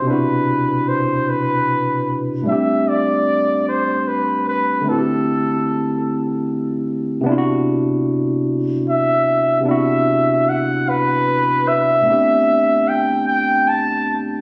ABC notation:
X:1
M:6/8
L:1/8
Q:3/8=50
K:Clyd
V:1 name="Flugelhorn"
B2 c B2 z | e d2 c B B | A4 z2 | z4 e2 |
e2 f B2 e- | e2 g g a z |]
V:2 name="Tine electric piano"
[B,,C,DEF]6 | [A,,G,A,CDG]6 | [D,A,CEFG]6 | [C,B,DE=F^F]6 |
[C,B,DEF]6 | [A,,A,B,CDG]6 |]